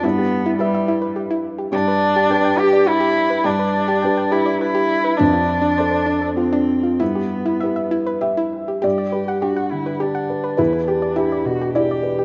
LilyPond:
<<
  \new Staff \with { instrumentName = "Felt piano" } { \time 3/4 \key g \mixolydian \tempo 4 = 103 << { r2. | r2. | r2. | r2. |
r2 e''4 | \key g \major d''2. | b'4 g'4 d''4 | } \\ { g,4 <e' g' b'>2 | g,4 <d' g' b'>2 | g,4 <d' g' b'>2 | f,4 <d' a' c''>2 |
g,4 <e' g' b'>2 | g,8 g'8 d'8 d8 g'8 b'8 | e,8 g'8 d'8 b,8 g'8 b'8 | } >> }
  \new Staff \with { instrumentName = "Synth pluck" } { \time 3/4 \key g \mixolydian e'16 g'16 r16 e'16 e''16 e''16 e'16 b'16 g'16 e'16 r16 g'16 | g'16 b'16 r16 g'16 g''16 g''16 g'16 d''16 b'16 g'16 r16 b'16 | g'16 b'16 r16 g'16 g''16 g''16 g'16 d''16 b'16 g'16 r16 b'16 | d'16 f'16 r16 d'16 c''16 c''16 d'16 a'16 f'16 d'16 r16 f'16 |
e'16 g'16 r16 e'16 e''16 e''16 e'16 b'16 g'16 e'16 r16 g'16 | \key g \major g'16 d''16 b'16 fis''16 g'16 fis''16 r16 b'16 g'16 fis''16 r16 b'16 | e'16 b'16 g'16 d''16 e'16 d''16 r16 g'16 e'16 d''16 r16 g'16 | }
  \new Staff \with { instrumentName = "Cello" } { \time 3/4 \key g \mixolydian b4 g4 r4 | d'4. g'8 e'4 | d'4. e'8 e'4 | d'2 c'4 |
b2 r4 | \key g \major g'4 fis'8 e'8 d'4 | e'8 d'8 e'8 fis'8 g'4 | }
>>